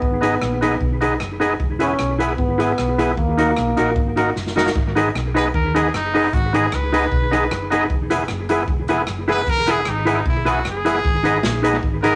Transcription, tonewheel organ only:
0.21 0.35 B3 medium
0.21 0.35 D#4 medium
0.21 0.35 G#4 loud
0.61 0.74 B3 medium
0.61 0.75 D#4 medium
0.61 0.75 G#4 medium
1.01 1.14 B3 medium
1.01 1.14 D#4 medium
1.01 1.15 G#4 loud
1.40 1.53 B3 medium
1.40 1.54 D#4 medium
1.40 1.54 G#4 loud
1.80 1.93 B3 medium
1.80 1.93 E4 medium
1.80 1.94 G#4 loud
2.19 2.32 B3 medium
2.19 2.33 E4 medium
2.19 2.33 G#4 medium
2.59 2.72 B3 loud
2.59 2.72 E4 medium
2.59 2.73 G#4 loud
2.98 3.12 B3 medium
2.98 3.12 E4 medium
2.98 3.12 G#4 loud
3.38 3.51 A#3 medium
3.38 3.51 D#4 medium
3.38 3.51 F#4 medium
3.77 3.90 A#3 medium
3.77 3.90 D#4 medium
3.77 3.91 F#4 loud
4.17 4.30 A#3 medium
4.17 4.30 D#4 medium
4.17 4.30 F#4 loud
4.56 4.69 A#3 medium
4.56 4.70 D#4 medium
4.56 4.70 F#4 loud
4.95 5.09 B3 medium
4.95 5.09 D#4 medium
4.95 5.09 G#4 loud
5.34 5.48 B3 loud
5.34 5.48 D#4 medium
5.34 5.48 G#4 medium
5.75 5.88 B3 loud
5.75 5.88 D#4 medium
5.75 5.88 G#4 loud
6.14 6.27 B3 loud
6.14 6.27 D#4 medium
6.14 6.27 G#4 loud
6.53 6.66 B3 medium
6.53 6.67 D#4 medium
6.53 6.67 G#4 loud
6.93 7.06 B3 medium
6.93 7.06 D#4 medium
6.93 7.06 G#4 loud
7.31 7.44 B3 medium
7.31 7.45 D#4 medium
7.31 7.45 G#4 loud
7.70 7.84 B3 loud
7.70 7.84 D#4 medium
7.70 7.84 G#4 loud
8.10 8.23 B3 medium
8.10 8.24 E4 medium
8.10 8.24 G#4 loud
8.49 8.62 B3 medium
8.49 8.63 E4 medium
8.49 8.63 G#4 loud
8.89 9.02 B3 loud
8.89 9.02 E4 medium
8.89 9.03 G#4 loud
9.28 9.41 B3 loud
9.28 9.41 E4 medium
9.28 9.42 G#4 loud
9.67 9.80 B3 medium
9.67 9.80 E4 medium
9.67 9.81 G#4 loud
10.06 10.20 B3 medium
10.06 10.20 E4 medium
10.06 10.20 G#4 loud
10.45 10.59 B3 medium
10.45 10.59 E4 medium
10.45 10.59 G#4 loud
10.85 10.98 B3 loud
10.85 10.99 E4 medium
10.85 10.99 G#4 loud
11.24 11.38 B3 medium
11.24 11.38 D#4 medium
11.24 11.38 G#4 loud
11.63 11.77 B3 medium
11.63 11.77 D#4 medium
11.63 11.77 G#4 loud
12.03 12.15 B3 medium
12.03 12.15 D#4 medium
12.03 12.15 G#4 loud

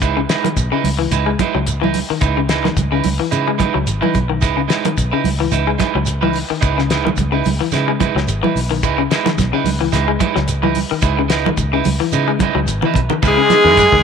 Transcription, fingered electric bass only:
0.02 0.25 C#2 medium
0.56 0.70 B1 medium
0.84 1.08 C#2 medium
1.11 1.35 C#2 medium
1.55 2.02 C#2 medium
2.10 muted fingered electric bass stroke soft
2.21 2.69 C#2 medium
2.76 3.00 C#2 medium
3.05 3.18 C#2 medium
3.32 3.69 C#3 medium
3.75 3.86 C#2 medium
3.88 4.01 G#1 medium
4.15 4.42 B1 medium
4.42 4.66 C#2 medium
4.97 5.11 B1 medium
5.25 5.49 C#2 medium
5.52 5.76 C#2 medium
5.95 6.42 C#2 medium
6.50 muted fingered electric bass stroke soft
6.63 7.10 C#2 medium
7.17 7.41 C#2 medium
7.46 7.59 C#2 medium
7.73 8.10 C#3 medium
8.15 8.26 C#2 medium
8.28 8.41 G#1 medium
8.55 8.83 B1 medium
8.83 9.07 C#2 medium
9.38 9.51 B1 loud
9.64 9.88 C#2 medium
9.93 10.16 C#2 medium
10.36 10.83 C#2 medium
10.92 muted fingered electric bass stroke soft
11.02 11.50 C#2 loud
11.57 11.81 C#2 medium
11.85 11.99 C#2 medium
12.12 12.49 C#3 medium
12.55 12.65 C#2 medium
12.66 12.80 G#1 loud
12.95 13.08 B1 medium
13.23 13.36 C#2 loud
13.49 muted fingered electric bass stroke soft
13.64 13.88 F#2 medium
13.92 14.03 C#2 medium

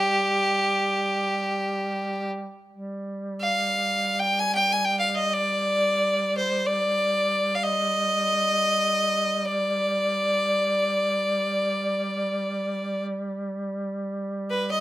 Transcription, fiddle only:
0.00 2.29 G4 medium
3.41 4.21 F5 medium
4.19 4.41 G5 medium
4.39 4.54 G#5 medium
4.55 4.74 G5 medium
4.72 4.86 G#5 medium
4.85 4.99 G5 medium
4.99 5.09 F5 medium
5.09 5.16 F5 soft
5.15 5.35 D#5 medium
5.33 6.37 D5 medium
6.37 6.67 C5 medium
6.66 7.57 D5 medium
7.55 7.65 F5 soft
7.63 9.46 D#5 medium
9.45 13.05 D5 medium
14.50 14.68 B4 medium
14.71 14.80 D#5 medium

